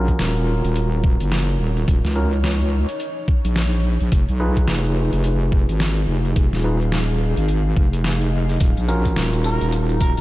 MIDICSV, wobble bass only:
0, 0, Header, 1, 2, 480
1, 0, Start_track
1, 0, Key_signature, -6, "minor"
1, 0, Tempo, 560748
1, 1606, Time_signature, 4, 2, 24, 8
1, 8738, End_track
2, 0, Start_track
2, 0, Title_t, "Wobble bass"
2, 0, Program_c, 0, 39
2, 0, Note_on_c, 0, 34, 94
2, 150, Note_off_c, 0, 34, 0
2, 167, Note_on_c, 0, 27, 92
2, 528, Note_off_c, 0, 27, 0
2, 552, Note_on_c, 0, 27, 97
2, 1008, Note_off_c, 0, 27, 0
2, 1031, Note_on_c, 0, 30, 98
2, 1351, Note_off_c, 0, 30, 0
2, 1365, Note_on_c, 0, 27, 94
2, 1590, Note_off_c, 0, 27, 0
2, 1609, Note_on_c, 0, 27, 96
2, 1729, Note_off_c, 0, 27, 0
2, 1751, Note_on_c, 0, 37, 92
2, 2447, Note_off_c, 0, 37, 0
2, 2952, Note_on_c, 0, 34, 96
2, 3408, Note_off_c, 0, 34, 0
2, 3432, Note_on_c, 0, 34, 89
2, 3511, Note_off_c, 0, 34, 0
2, 3527, Note_on_c, 0, 29, 98
2, 3648, Note_off_c, 0, 29, 0
2, 3672, Note_on_c, 0, 35, 95
2, 3991, Note_off_c, 0, 35, 0
2, 4005, Note_on_c, 0, 29, 94
2, 4367, Note_off_c, 0, 29, 0
2, 4390, Note_on_c, 0, 29, 95
2, 4847, Note_off_c, 0, 29, 0
2, 4870, Note_on_c, 0, 32, 91
2, 5191, Note_off_c, 0, 32, 0
2, 5206, Note_on_c, 0, 29, 96
2, 5431, Note_off_c, 0, 29, 0
2, 5447, Note_on_c, 0, 29, 95
2, 5568, Note_off_c, 0, 29, 0
2, 5589, Note_on_c, 0, 27, 95
2, 6286, Note_off_c, 0, 27, 0
2, 6311, Note_on_c, 0, 32, 96
2, 6631, Note_off_c, 0, 32, 0
2, 6647, Note_on_c, 0, 29, 95
2, 7351, Note_off_c, 0, 29, 0
2, 7368, Note_on_c, 0, 27, 95
2, 7488, Note_off_c, 0, 27, 0
2, 7513, Note_on_c, 0, 34, 95
2, 7832, Note_off_c, 0, 34, 0
2, 7846, Note_on_c, 0, 27, 90
2, 8207, Note_off_c, 0, 27, 0
2, 8232, Note_on_c, 0, 27, 94
2, 8688, Note_off_c, 0, 27, 0
2, 8712, Note_on_c, 0, 30, 98
2, 8738, Note_off_c, 0, 30, 0
2, 8738, End_track
0, 0, End_of_file